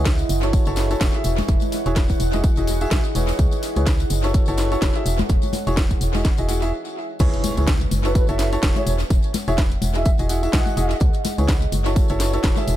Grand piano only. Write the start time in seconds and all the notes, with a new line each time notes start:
0.43 E4 F#4 A4 C#5
0.67 E4 F#4 A4 C#5
0.91 E4 F#4 A4 C#5
1.15 E4 F#4 G#4 E5
1.86 E4 F#4 G#4 C#5
2.34 E4 F#4 G#4 D#5
2.57 E4 F#4 G#4 D#5
2.81 E4 F#4 G#4 E5
3.15 E4 G#4 B4 C#5
3.77 E4 G#4 B4 C#5
4.24 E4 F#4 A4 C#5
4.48 E4 F#4 A4 C#5
4.72 E4 F#4 A4 C#5
4.95 E4 F#4 G#4 E5
5.67 E4 F#4 G#4 C#5
6.15 E4 F#4 G#4 D#5
6.38 E4 F#4 G#4 D#5
6.49 E4 F#4 G#4 F#5
6.62 E4 F#4 G#4 E5
7.20 E4 G#4 B4 C#5
7.57 E4 G#4 B4 C#5
8.05 E4 F#4 A4 C#5
8.29 E4 F#4 A4 C#5
8.53 E4 F#4 A4 C#5
8.76 E4 F#4 G#4 E5
9.48 E4 F#4 G#4 C#5
9.95 E4 F#4 G#4 D#5
10.19 E4 F#4 G#4 D#5
10.29 E4 F#4 G#4 F#5
10.43 E4 F#4 G#4 E5
10.53 E4 F#4 G#4 D#5
10.77 E4 F#4 G#4 D#5
11.38 E4 G#4 B4 C#5
11.86 E4 F#4 A4 C#5
12.10 E4 F#4 A4 C#5
12.34 E4 F#4 A4 C#5
12.57 E4 F#4 G#4 E5